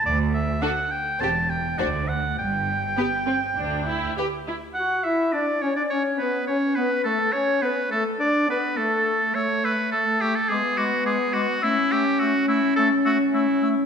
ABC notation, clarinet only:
X:1
M:4/4
L:1/16
Q:1/4=104
K:G
V:1 name="Clarinet"
z16 | z16 | [K:Amix] F2 E2 D2 C D C2 B,2 C2 B,2 | A,2 C2 B,2 A,2 D2 B,2 A,4 |
A,2 A,2 A,2 A,2 ^G,2 G,2 G,2 G,2 | A,2 A,2 A,2 A,2 A,2 A,2 A,2 A,2 |]